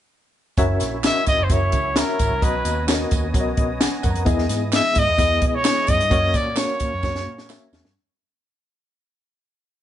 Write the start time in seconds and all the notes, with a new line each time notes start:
0.57 F#1 F#3 C#4 E4 F#4 A#4 E5, kick, closed hi-hat, tambourine
0.80 A#1, snare, closed hi-hat, tambourine
1.04 C#4 F#4 A#4 D#5 E5, snare, clap, closed hi-hat, tambourine
1.26 A#1 D#5, kick, closed hi-hat, tambourine
1.38 F#1
1.44 C5
1.50 F#1 C#4 F#4 A#4 C#5 E5, kick, closed hi-hat, tambourine
1.72 C#2, kick, closed hi-hat, tambourine
1.96 C#4 F#4 A#4 E5, snare, clap, closed hi-hat, tambourine
2.19 G#1, kick, closed hi-hat, tambourine
2.30 C2
2.41 B1 B2 B3 F#4 B4 D#5 A#5, kick, closed hi-hat, tambourine
2.65 D#2, closed hi-hat, tambourine
2.87 B3 F#4 A#4 C#5, snare, clap, closed hi-hat, tambourine
2.94 D#5
3.11 D#2, kick, closed hi-hat, tambourine
3.34 B1 B3 F#4 A#4 C#5, kick, closed hi-hat, tambourine
3.40 D#5
3.57 B1 D#5, kick, closed hi-hat
3.80 B4 F#5 G#5, snare, clap, closed hi-hat, tambourine
4.03 F#2 A#4 F#5, kick, closed hi-hat, tambourine
4.10 A#5
4.14 F2, closed hi-hat
4.25 E2 E3 G#3 B3 E4 G#4 D#5, kick, closed hi-hat, tambourine
4.38 snare
4.49 G#2, snare, closed hi-hat, tambourine
4.72 B3 E4 G#4 D#5 E5, snare, clap, closed hi-hat, tambourine
4.95 G#2 D#5, kick, closed hi-hat, tambourine
5.08 E2
5.18 E2 B3 E4 G#4 D#5, kick, closed hi-hat, tambourine
5.42 B2, kick, closed hi-hat
5.48 D#5
5.55 C#5
5.63 B3 E4 G#4 C#5, snare, clap, closed hi-hat, tambourine
5.87 F#2 D#5, kick, closed hi-hat, tambourine
5.99 G2, closed hi-hat
6.10 F#2 F#3 A#3 C#4 F#4 C#5, kick, closed hi-hat
6.34 A#2 D5, kick, closed hi-hat, tambourine
6.55 A#3 C#4 F#4 C#5, snare, clap, closed hi-hat, tambourine
6.80 A#2, kick, closed hi-hat, tambourine
6.92 F#2
7.03 F#2 A#3 C#4 F#4 C#5, kick, snare, tambourine
7.15 snare
7.26 A#2
7.38 snare
7.49 A#3 C#4 F#4 E5, snare, clap, tambourine
7.73 E2, snare, tambourine
7.84 G2, snare